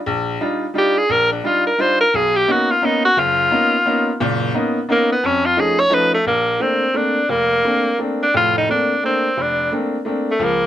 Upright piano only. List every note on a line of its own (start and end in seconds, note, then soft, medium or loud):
0.06 0.36 A#1 medium
0.40 0.64 G3 medium
0.40 0.64 D4 medium
0.40 0.64 D#4 medium
0.40 0.64 F4 medium
0.74 0.98 G3 medium
0.74 0.98 D4 medium
0.74 0.98 D#4 medium
0.74 0.98 F4 medium
1.09 1.39 A#1 medium
1.44 1.67 G3 medium
1.44 1.67 D4 medium
1.44 1.67 D#4 soft
1.44 1.67 F4 medium
1.78 2.01 G3 medium
1.78 2.02 D4 medium
1.78 2.02 D#4 medium
1.78 2.02 F4 medium
2.14 2.43 B1 medium
2.48 2.71 A#3 medium
2.48 2.71 B3 soft
2.48 2.71 C#4 medium
2.48 2.71 D#4 medium
2.82 3.05 A#3 medium
2.82 3.05 B3 medium
2.82 3.05 C#4 medium
2.82 3.05 D#4 medium
3.17 3.46 F#1 medium
3.51 3.74 A#3 medium
3.51 3.74 B3 medium
3.51 3.74 C#4 medium
3.51 3.74 D#4 medium
3.86 4.08 A#3 medium
3.86 4.08 B3 medium
3.86 4.09 C#4 medium
3.86 4.09 D#4 medium
4.20 4.50 F#1 medium
4.20 4.50 A#2 medium
4.54 4.77 A#3 medium
4.54 4.77 B3 medium
4.54 4.78 C#4 soft
4.54 4.77 D#4 medium
4.89 5.12 A#3 medium
4.89 5.12 B3 medium
4.89 5.12 C#4 medium
4.89 5.12 D#4 medium
5.23 5.53 F2 medium
5.57 5.80 F3 medium
5.57 5.80 A3 soft
5.57 5.80 C#4 medium
5.57 5.80 D#4 medium
5.90 6.14 F3 medium
5.90 6.14 A3 medium
5.90 6.14 C#4 medium
5.90 6.14 D#4 medium
6.26 6.56 A#1 medium
6.60 6.83 A3 medium
6.60 6.83 A#3 soft
6.60 6.84 C4 soft
6.60 6.84 D4 medium
6.94 7.18 A3 medium
6.94 7.18 A#3 soft
6.94 7.18 C4 soft
6.94 7.18 D4 medium
7.29 7.59 F1 medium
7.65 7.87 A3 medium
7.65 7.88 A#3 soft
7.65 7.88 C4 soft
7.65 7.88 D4 medium
7.98 8.22 A3 soft
7.98 8.22 A#3 soft
7.98 8.22 C4 soft
7.98 8.22 D4 medium
8.34 8.64 F1 medium
8.34 8.64 A2 medium
8.69 8.91 A3 medium
8.69 8.92 A#3 soft
8.69 8.92 C4 soft
8.69 8.92 D4 medium
9.03 9.26 A3 soft
9.03 9.26 A#3 soft
9.03 9.26 C4 soft
9.03 9.26 D4 medium
9.37 9.67 F1 medium
9.72 9.95 A3 medium
9.72 9.95 A#3 soft
9.72 9.95 C4 soft
9.72 9.95 D4 medium
10.05 10.29 A3 medium
10.05 10.29 A#3 soft
10.05 10.29 C4 soft
10.05 10.29 D4 medium
10.39 10.66 C#2 medium
10.39 10.66 F3 medium